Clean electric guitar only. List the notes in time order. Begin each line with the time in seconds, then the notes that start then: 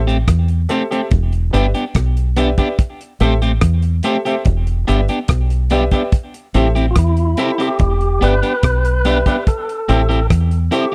0.07 A3 C4 G4
0.70 A3 C4 G4
0.91 A3 C4 G4
1.53 B3 D4 G4
1.75 B3 D4 G4
2.37 B3 D4 G4
2.58 B3 D4 G4
3.21 A3 C4 G4
3.42 A3 C4 G4
4.04 A3 C4 G4
4.25 A3 C4 G4
4.88 B3 D4 G4
5.09 B3 D4 G4
5.71 B3 D4 G4
5.92 B3 D4 G4
6.54 C4 E4 G4
6.75 C4 E4 G4
7.38 C4 E4 G4
7.58 C4 E4 G4
8.21 B3 D4 G4
8.43 B3 D4 G4
9.05 B3 D4 G4
9.26 B3 D4 G4
9.89 C4 E4 G4
10.09 C4 E4 G4
10.71 C4 E4 G4